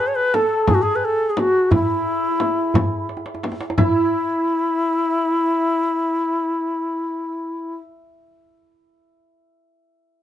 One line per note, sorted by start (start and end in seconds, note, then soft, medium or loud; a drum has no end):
0.00 0.48 F#4 medium
0.00 0.40 G#4 medium
0.00 0.32 B4 medium
0.00 1.18 C#5 medium
0.00 0.45 D#5 medium
0.00 tombak ka soft
0.07 0.17 C#5 medium
0.15 0.36 B4 medium
0.34 0.74 A4 medium
0.34 0.71 A4 medium
0.34 tombak tek medium
0.34 frame drum medium
0.67 0.82 G#4 medium
0.67 0.76 G#4 medium
0.67 frame drum medium
0.67 tombak dum medium
0.74 0.83 F#4 medium
0.82 0.97 G#4 medium
0.82 3.86 G#4 medium
0.96 1.06 B4 medium
1.05 1.31 A4 medium
1.30 1.41 G#4 medium
1.37 1.73 F#4 medium
1.37 tombak tek medium
1.37 frame drum medium
1.71 3.77 E4 medium
1.71 3.07 E4 medium
1.71 tombak dum medium
1.71 frame drum medium
2.06 tombak ka soft
2.40 tombak tek medium
2.40 frame drum medium
2.74 tombak dum medium
2.74 frame drum medium
3.09 tombak tek medium
3.17 tombak ka medium
3.26 tombak tek medium
3.35 tombak ka medium
3.43 tombak tek medium
3.43 frame drum medium
3.52 tombak ka medium
3.61 tombak tek medium
3.70 tombak ka medium
3.78 7.74 E4 medium
3.78 7.75 E4 medium
3.78 frame drum medium
3.78 tombak dum medium